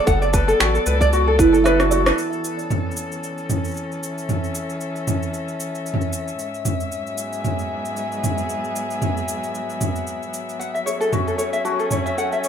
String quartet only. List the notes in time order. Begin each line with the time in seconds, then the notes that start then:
Already playing: F#3 B3 A4 D5
2.19 E3
2.56 C#4
4.09 E5
6.39 G#2
7.00 F#3
7.10 B3
7.16 G#4
10.96 C#4
11.81 A4